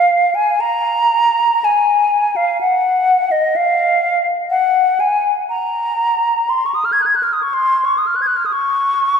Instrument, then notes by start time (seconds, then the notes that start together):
flute
Already playing: F5
0.35 G#5
0.60 A#5
1.64 G#5
2.36 F5
2.61 F#5
3.31 D#5
3.56 F5
4.50 F#5
5.00 G#5
5.49 A#5
6.50 C6
6.66 C#6
6.75 D#6
6.85 F6
6.92 G#6
7.02 F#6 G#6
7.16 F#6
7.23 F6
7.33 D#6
7.43 C#6
7.54 C6
7.85 C#6
7.98 D#6
8.07 F6
8.16 F#6
8.22 G#6
8.27 F#6
8.36 F6
8.46 D#6
8.53 C#6